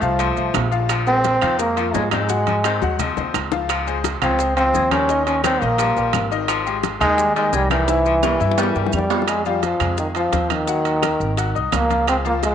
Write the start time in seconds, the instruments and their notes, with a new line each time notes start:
0.01 upright bass C2, grand piano F3 F4 F5, trombone F3, high bongo, high conga, maracas
0.19 baritone saxophone F3, grand piano A3 A4 C5, high bongo, high conga, high timbale, maracas
0.36 upright bass C2, grand piano A3 A4 C5, high conga, maracas
0.54 upright bass A#1, high bongo, low bongo, high conga, high timbale, low timbale, claves, maracas
0.71 grand piano F3 F4 F5, high bongo, high conga, maracas
0.89 baritone saxophone F3, high bongo, high conga, high timbale, claves, maracas
1.07 grand piano G#3 G#4 A#4, trombone C4, high bongo, high conga, maracas
1.24 high bongo, high conga, high timbale, maracas
1.41 upright bass F2, baritone saxophone D#3, grand piano F3 F4 F5, high bongo, high conga, low conga, high timbale, claves, maracas
1.59 grand piano G#3 G#4 A#4, trombone A#3, high bongo, high conga, maracas
1.76 grand piano F3 F4 F5, baritone saxophone F3, high conga, high timbale, maracas
1.94 upright bass G#2, trombone G#3, baritone saxophone G#3, high bongo, low bongo, high conga, low timbale, maracas
2.11 baritone saxophone D#3, trombone G#3, grand piano C4 C5 D#5, high bongo, high conga, high timbale, claves, maracas
2.29 grand piano F#3 F#4 F#5, high bongo, high conga, maracas
2.47 baritone saxophone F3, high bongo, high conga, high timbale, maracas
2.64 baritone saxophone D#3, grand piano C4 C5 D#5, high bongo, high timbale, claves, maracas
2.82 upright bass D#2, grand piano F#3 F#4 F#5, high bongo, high conga, maracas
2.99 baritone saxophone F3, grand piano C4 C5 D#5, high bongo, low conga, high timbale, maracas
3.17 upright bass D#2, grand piano C4 C5 D#5, low bongo, low conga, maracas
3.34 upright bass C#2, low bongo, high timbale, claves, maracas
3.52 grand piano F3 F4 F5, low bongo, low conga, maracas
3.69 baritone saxophone F3, high bongo, high conga, high timbale, claves, maracas
3.87 grand piano G#3 G#4 C5, high bongo, high conga, maracas
4.04 high bongo, high conga, high timbale, maracas
4.22 upright bass C#2, baritone saxophone C#3, grand piano F3 F4 F5, trombone C4, high bongo, high conga, low conga, high timbale, claves, maracas
4.39 grand piano G#3 G#4 C5, high bongo, high conga, maracas
4.57 baritone saxophone F3, grand piano F3 F4 F5, trombone C4, high conga, high timbale, maracas
4.74 upright bass D#2, baritone saxophone G#3, high bongo, low bongo, high conga, maracas
4.91 baritone saxophone D#3, grand piano G3 G4 A#4, trombone C#4, high bongo, high conga, high timbale, claves, maracas
5.09 grand piano D#3 D#4 D#5, high bongo, maracas
5.26 baritone saxophone F3, trombone C#4, high bongo, high conga, high timbale, maracas
5.44 baritone saxophone D#3, grand piano G3 G4 A#4, trombone C4, high bongo, high conga, high timbale, claves, maracas
5.61 upright bass A#1, grand piano D#3 D#4 D#5, trombone A#3, high bongo, maracas
5.78 baritone saxophone F3, grand piano G3 G4 A#4, high bongo, high conga, high timbale, maracas
5.97 upright bass A#1, grand piano G3 G4 A#4, high conga, maracas
6.13 upright bass G#1, high bongo, low bongo, high conga, high timbale, claves, maracas
6.31 grand piano D#3 D#4 D#5, high bongo, high conga, maracas
6.48 baritone saxophone F3, high bongo, high conga, high timbale, claves, maracas
6.66 grand piano G#3 G4 G#4, high bongo, high conga, maracas
6.83 high bongo, high conga, high timbale, maracas
7.00 upright bass D#2, grand piano D#3 D#4 D#5, baritone saxophone D#3, trombone G#3, high bongo, high conga, low conga, high timbale, claves, maracas
7.18 grand piano G3 G4 G#4, high bongo, high conga, maracas
7.36 grand piano D#3 D#4 D#5, baritone saxophone G3, trombone G#3, high conga, high timbale, maracas
7.53 upright bass C2, trombone G3, baritone saxophone G#3, high bongo, low bongo, high conga, maracas
7.70 baritone saxophone D#3, trombone E3, grand piano G3 G4 A#4, high bongo, high conga, high timbale, claves, maracas
7.88 grand piano E3 E4 E5, high bongo, high conga, high timbale, maracas
8.06 baritone saxophone F3, high bongo, high conga, maracas
8.23 baritone saxophone E3, grand piano G3 G4 A#4, high bongo, high conga, low timbale, claves, maracas
8.40 upright bass G2, grand piano E3 E4 E5, high bongo, high conga, maracas
8.51 high bongo
8.57 grand piano G3 G4 A#4, baritone saxophone G3, high conga, low timbale, maracas
8.63 high bongo
8.75 upright bass G2, grand piano G3 G4 A#4, high conga, maracas
8.86 low bongo
8.93 upright bass F2, trombone G3, high conga, claves, maracas
8.98 low bongo
9.10 grand piano F3 F4 F5, low timbale, maracas
9.22 low bongo
9.28 grand piano G#3 G#4 G#5, trombone G#3, high bongo, high conga, high timbale, claves, maracas
9.45 grand piano F3 F4 F5, trombone G3, high conga, maracas
9.63 trombone F3, high bongo, high conga, high timbale, maracas
9.80 upright bass F2, grand piano G#3 G#4 G#5, high bongo, high conga, low conga, high timbale, claves, maracas
9.98 trombone D#3, high bongo, high conga, maracas
10.15 grand piano F3 F4 F5, trombone F3, high bongo, high conga, high timbale, maracas
10.32 upright bass D#2, grand piano C4 C5 C6, high bongo, low bongo, high conga, high timbale, maracas
10.50 trombone D#3, high bongo, high conga, high timbale, claves, maracas
10.67 grand piano F#3 F#4 F#5, high bongo, high conga, maracas
10.85 high conga, high timbale, maracas
11.02 grand piano A#3 A#4 A#5, high bongo, high conga, high timbale, claves, maracas
11.20 upright bass G#1, high bongo, high conga, maracas
11.37 grand piano F#4 F#5 F#6, high bongo, high conga, high timbale, maracas
11.55 upright bass C2, grand piano D#4 D#5 D#6, high bongo, high conga, maracas
11.72 upright bass C#2, trombone A#3, high bongo, low bongo, high conga, high timbale, low timbale, claves, maracas
11.90 grand piano F4 F5 F6, high bongo, high conga, high timbale, maracas
12.07 grand piano G#3 G#4 G#5, trombone C4, high bongo, high conga, high timbale, claves, maracas
12.25 grand piano F3 F4 F5, trombone A#3, high conga, maracas
12.43 trombone G#3, high bongo, high conga, high timbale, maracas